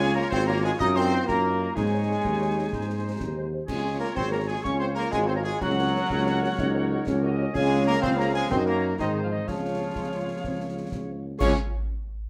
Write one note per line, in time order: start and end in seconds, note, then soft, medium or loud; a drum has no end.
0.00 0.24 C#2 loud
0.00 0.13 G#3 loud
0.00 0.28 F4 loud
0.00 0.80 F4 loud
0.00 0.14 G#4 loud
0.00 0.76 C#5 loud
0.00 0.16 G#5 loud
0.15 0.22 A#3 loud
0.15 0.21 C#4 loud
0.15 0.21 F4 loud
0.15 0.32 A#4 loud
0.15 0.21 C#5 loud
0.15 0.30 A#5 loud
0.30 0.72 G#1 loud
0.30 0.47 C4 loud
0.30 1.78 F4 loud
0.30 0.46 C5 loud
0.30 0.46 C6 loud
0.30 concert bass drum medium
0.30 snare medium
0.46 0.63 A#3 loud
0.46 0.53 C#4 loud
0.46 0.53 F4 loud
0.46 0.62 A#4 loud
0.46 0.53 C#5 loud
0.46 0.65 A#5 loud
0.63 0.72 G#3 loud
0.63 0.69 C#4 loud
0.63 0.69 F4 medium
0.63 0.71 G#4 loud
0.63 0.69 C#5 loud
0.63 0.79 G#5 loud
0.78 1.20 F#2 loud
0.78 1.24 D#4 loud
0.78 0.88 D#4 loud
0.78 1.25 A#4 loud
0.78 0.87 D#5 loud
0.78 0.97 D#6 loud
0.78 concert bass drum loud
0.78 snare medium
0.95 1.26 C4 loud
0.95 1.01 D#4 medium
0.95 1.01 A#4 loud
0.95 1.25 C5 loud
0.95 1.27 C6 loud
1.11 1.17 D#4 loud
1.11 1.17 A#4 loud
1.26 1.68 F#2 loud
1.26 1.76 A#3 loud
1.26 1.72 D#4 loud
1.26 1.72 A#4 loud
1.26 1.73 A#5 medium
1.26 concert bass drum medium
1.26 snare medium
1.43 1.50 D#4 medium
1.43 1.49 A#4 medium
1.60 1.66 D#4 medium
1.60 1.66 A#4 medium
1.75 2.16 G#2 loud
1.75 3.49 G#3 loud
1.75 2.68 D#4 medium
1.75 3.45 D#4 loud
1.75 3.48 G#4 loud
1.75 2.72 C#5 medium
1.75 3.48 G#5 loud
1.75 concert bass drum medium
1.75 snare medium
1.75 crash soft
1.92 1.97 D#4 medium
1.92 1.98 G#4 medium
1.92 1.98 C#5 medium
2.08 2.14 D#4 medium
2.08 2.14 G#4 medium
2.08 2.14 C#5 medium
2.25 2.65 D#2 loud
2.25 concert bass drum medium
2.25 snare medium
2.40 2.46 D#4 medium
2.40 2.46 G#4 medium
2.40 2.46 C#5 medium
2.56 2.62 D#4 medium
2.56 2.62 G#4 medium
2.56 2.62 C#5 medium
2.72 3.13 G#2 loud
2.72 3.48 D#4 medium
2.72 3.49 C5 medium
2.72 concert bass drum medium
2.72 snare medium
2.88 2.94 D#4 medium
2.88 2.94 G#4 medium
2.88 2.94 C5 medium
3.04 3.10 D#4 medium
3.04 3.10 G#4 medium
3.04 3.10 C5 medium
3.20 3.61 D#2 medium
3.20 concert bass drum medium
3.20 snare medium
3.36 3.42 D#4 medium
3.36 3.42 G#4 medium
3.36 3.42 C5 medium
3.52 3.58 D#4 medium
3.52 3.58 G#4 medium
3.52 3.58 C5 medium
3.67 4.04 C#2 loud
3.67 3.98 G#3 loud
3.67 4.60 F4 medium
3.67 4.18 F4 loud
3.67 3.98 G#4 medium
3.67 4.60 C#5 medium
3.67 3.98 G#5 medium
3.67 concert bass drum medium
3.67 snare medium
3.67 crash medium
3.84 3.90 F4 medium
3.84 3.90 G#4 medium
3.84 3.90 C#5 medium
4.00 4.07 A#3 loud
4.00 4.06 F4 medium
4.00 4.06 G#4 medium
4.00 4.15 A#4 loud
4.00 4.06 C#5 medium
4.00 4.15 A#5 medium
4.15 4.57 G#1 medium
4.15 4.31 C4 loud
4.15 4.66 G#4 loud
4.15 4.31 C5 loud
4.15 4.31 C6 loud
4.15 concert bass drum medium
4.15 snare medium
4.31 4.38 A#3 loud
4.31 4.38 F4 medium
4.31 4.38 G#4 medium
4.31 4.39 A#4 medium
4.31 4.38 C#5 medium
4.31 4.49 A#5 loud
4.47 4.56 G#3 loud
4.47 4.54 F4 medium
4.47 4.54 G#4 medium
4.47 4.63 G#4 loud
4.47 4.54 C#5 medium
4.47 4.63 G#5 loud
4.63 5.05 C#2 loud
4.63 4.80 C#4 loud
4.63 5.09 F4 medium
4.63 5.61 F4 loud
4.63 4.80 C#5 loud
4.63 5.09 C#5 medium
4.63 4.78 C#6 loud
4.63 concert bass drum medium
4.63 snare medium
4.79 4.88 C4 loud
4.79 4.86 F4 medium
4.79 4.86 G#4 medium
4.79 4.87 C5 loud
4.79 4.86 C#5 medium
4.79 4.85 C6 loud
4.95 5.11 A#3 loud
4.95 5.02 F4 medium
4.95 5.02 G#4 medium
4.95 5.11 A#4 loud
4.95 5.02 C#5 medium
4.95 5.02 A#5 loud
5.11 5.53 G#1 loud
5.11 5.27 G#3 loud
5.11 5.58 F4 medium
5.11 5.19 G#4 loud
5.11 5.58 C#5 medium
5.11 5.18 G#5 loud
5.11 concert bass drum medium
5.11 snare medium
5.27 5.36 C4 loud
5.27 5.35 F4 medium
5.27 5.35 G#4 loud
5.27 5.31 C5 loud
5.27 5.35 C#5 medium
5.27 5.35 C6 loud
5.35 5.45 A#3 loud
5.35 5.44 A#4 medium
5.35 5.40 A#5 medium
5.43 5.60 G#3 loud
5.43 5.50 F4 medium
5.43 5.59 G#4 loud
5.43 5.51 G#4 medium
5.43 5.51 C#5 medium
5.43 5.50 G#5 loud
5.60 6.02 C#2 loud
5.60 7.34 F#3 loud
5.60 7.33 F#4 loud
5.60 6.06 F#4 loud
5.60 7.50 A#4 loud
5.60 7.18 C#5 loud
5.60 7.34 F#5 loud
5.60 concert bass drum medium
5.60 snare medium
5.60 crash soft
5.77 5.83 F#4 medium
5.77 5.83 A#4 medium
5.77 5.83 C#5 loud
5.93 5.99 F#4 loud
5.93 5.99 A#4 loud
5.93 5.99 C#5 medium
6.10 6.50 C#2 loud
6.10 6.61 F#4 loud
6.10 concert bass drum medium
6.10 snare medium
6.26 6.31 F#4 loud
6.26 6.32 A#4 loud
6.26 6.31 C#5 loud
6.41 6.47 F#4 loud
6.41 6.47 A#4 loud
6.41 6.47 C#5 loud
6.58 6.98 C#2 loud
6.58 7.09 D#4 loud
6.58 concert bass drum loud
6.58 snare medium
6.74 6.79 F#4 loud
6.74 6.79 A#4 loud
6.74 6.79 C#5 loud
6.90 6.96 F#4 loud
6.90 6.96 A#4 loud
6.90 6.96 C#5 loud
7.07 7.47 C#2 loud
7.07 8.51 C#4 loud
7.07 concert bass drum medium
7.07 snare medium
7.22 7.28 F#4 loud
7.22 7.28 A#4 loud
7.22 7.28 C#5 loud
7.22 7.55 D#5 loud
7.37 7.44 F#4 loud
7.37 7.44 A#4 loud
7.37 7.43 C#5 loud
7.54 7.97 C#2 loud
7.54 7.84 G#3 loud
7.54 8.46 F4 loud
7.54 8.46 G#4 loud
7.54 7.84 G#4 loud
7.54 8.50 G#4 loud
7.54 8.14 C#5 loud
7.54 8.51 F5 loud
7.54 7.84 G#5 loud
7.54 concert bass drum loud
7.54 snare medium
7.54 crash soft
7.86 7.94 A#3 loud
7.86 8.01 A#4 loud
7.86 8.01 A#5 loud
8.01 8.45 C#2 loud
8.01 8.17 C4 loud
8.01 8.09 C5 loud
8.01 8.09 C6 loud
8.01 concert bass drum loud
8.01 snare medium
8.17 8.34 A#3 loud
8.17 8.26 A#4 loud
8.17 8.51 C5 loud
8.17 8.33 A#5 loud
8.33 8.50 G#3 loud
8.33 8.49 G#4 loud
8.33 8.49 G#5 loud
8.50 8.93 F#2 loud
8.50 8.58 C4 loud
8.50 8.95 D#4 loud
8.50 8.96 D#4 loud
8.50 8.95 F#4 loud
8.50 8.99 F#4 loud
8.50 8.95 A#4 loud
8.50 8.66 C5 loud
8.50 8.62 D#5 medium
8.50 8.57 C6 loud
8.50 concert bass drum medium
8.50 snare medium
8.66 8.96 A#3 loud
8.66 8.96 A#4 loud
8.66 8.97 A#5 loud
8.75 8.86 C#5 medium
8.98 9.41 G#2 loud
8.98 9.21 D#3 loud
8.98 9.44 C4 loud
8.98 9.21 D#4 loud
8.98 9.44 D#4 medium
8.98 9.46 G#4 medium
8.98 9.44 G#4 medium
8.98 9.47 C5 medium
8.98 9.44 C5 medium
8.98 9.22 D#5 medium
8.98 concert bass drum medium
8.98 snare medium
9.23 9.27 F3 loud
9.23 9.30 F4 medium
9.23 9.27 F5 medium
9.31 9.39 D#3 loud
9.31 9.47 D#4 medium
9.31 9.49 D#5 medium
9.47 9.90 C#2 medium
9.47 11.20 F3 loud
9.47 11.24 C#4 medium
9.47 9.89 C#4 medium
9.47 11.20 F4 medium
9.47 11.20 G#4 medium
9.47 11.24 C#5 medium
9.47 11.24 F5 medium
9.47 concert bass drum medium
9.47 snare medium
9.47 crash soft
9.95 10.32 C#2 medium
9.95 10.29 G#3 medium
9.95 concert bass drum medium
9.95 snare medium
10.28 10.43 A#3 medium
10.43 10.86 C#2 medium
10.43 10.58 C4 medium
10.43 concert bass drum medium
10.43 snare medium
10.60 10.67 A#3 medium
10.76 10.83 G#3 medium
10.92 11.35 C#2 medium
10.92 10.99 C#4 medium
10.92 concert bass drum medium
10.92 snare medium
11.09 11.16 C4 medium
11.24 11.31 A#3 medium
11.39 11.54 C#2 loud
11.39 11.54 C#4 loud
11.39 11.53 F4 loud
11.39 11.53 G#4 loud
11.39 11.53 C#5 loud
11.39 11.53 F5 loud
11.39 11.57 C#6 loud
11.39 concert bass drum loud
11.39 snare loud
11.39 crash medium